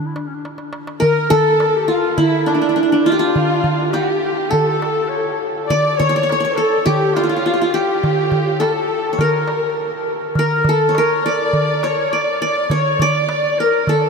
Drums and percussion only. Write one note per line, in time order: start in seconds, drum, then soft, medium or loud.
0.01 darbuka ka soft
0.16 darbuka tek medium
0.31 darbuka ka soft
0.45 darbuka tek medium
0.58 darbuka ka medium
0.73 darbuka tek medium
0.87 darbuka ka medium
1.02 darbuka dum medium
1.31 darbuka dum medium
1.60 darbuka tek medium
1.75 darbuka ka soft
1.88 darbuka ka soft
2.04 darbuka ka soft
2.18 darbuka dum medium
2.48 darbuka tek medium
2.92 darbuka ka soft
3.07 darbuka ka soft
3.21 darbuka ka soft
3.36 darbuka dum medium
3.64 darbuka dum medium
3.93 darbuka tek medium
4.09 darbuka ka soft
4.24 darbuka ka soft
4.39 darbuka ka soft
4.52 darbuka dum medium
4.82 darbuka tek medium
5.27 darbuka ka soft
5.42 darbuka ka soft
5.56 darbuka ka soft
5.70 darbuka dum medium
6.00 darbuka dum medium
6.30 darbuka tek medium
6.44 darbuka ka soft
6.57 darbuka ka soft
6.72 darbuka ka soft
6.86 darbuka dum medium
7.16 darbuka tek medium
7.60 darbuka ka soft
7.74 darbuka ka soft
7.88 darbuka ka soft
8.04 darbuka dum medium
8.32 darbuka dum medium
8.47 darbuka ka soft
8.61 darbuka tek medium
8.75 darbuka ka soft
8.90 darbuka ka soft
9.04 darbuka ka soft
9.19 darbuka dum medium
9.48 darbuka tek medium
9.63 darbuka ka soft
9.92 darbuka ka soft
10.07 darbuka ka soft
10.21 darbuka ka soft
10.35 darbuka dum medium
10.64 darbuka dum medium
10.95 darbuka tek medium
11.09 darbuka ka soft
11.25 darbuka ka soft
11.38 darbuka ka soft
11.53 darbuka dum medium
11.83 darbuka tek medium
12.27 darbuka ka soft
12.41 darbuka ka soft
12.55 darbuka ka soft
12.70 darbuka dum medium
12.99 darbuka dum medium
13.29 darbuka tek medium
13.44 darbuka ka soft
13.58 darbuka ka soft
13.73 darbuka ka soft
13.87 darbuka dum medium